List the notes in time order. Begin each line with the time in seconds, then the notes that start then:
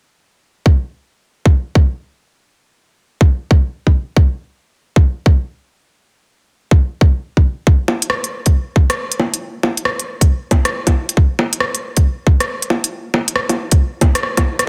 0.66 kick
1.46 kick
1.75 kick
3.21 kick
3.51 kick
3.87 kick
4.17 kick
4.96 kick
5.26 kick
6.71 kick
7.01 kick
7.37 kick
7.67 kick
7.88 low bongo
8.02 closed hi-hat
8.10 cross-stick
8.24 closed hi-hat
8.46 kick, closed hi-hat
8.76 kick
8.90 cross-stick, closed hi-hat
9.12 closed hi-hat
9.20 low bongo
9.34 closed hi-hat
9.63 low bongo
9.77 closed hi-hat
9.85 cross-stick
9.99 closed hi-hat
10.21 kick, closed hi-hat
10.51 kick, closed hi-hat, low bongo
10.65 cross-stick, closed hi-hat
10.87 kick, closed hi-hat, low bongo
11.09 closed hi-hat
11.17 kick
11.39 low bongo
11.53 closed hi-hat
11.60 cross-stick
11.75 closed hi-hat
11.97 kick, closed hi-hat
12.27 kick
12.40 cross-stick, closed hi-hat
12.62 closed hi-hat
12.70 low bongo
12.84 closed hi-hat
13.14 low bongo
13.28 closed hi-hat
13.36 cross-stick
13.49 closed hi-hat, low bongo
13.71 kick, closed hi-hat
14.01 kick, closed hi-hat, low bongo
14.15 cross-stick, closed hi-hat
14.23 cross-stick
14.37 kick, cross-stick, closed hi-hat, low bongo
14.59 cross-stick, closed hi-hat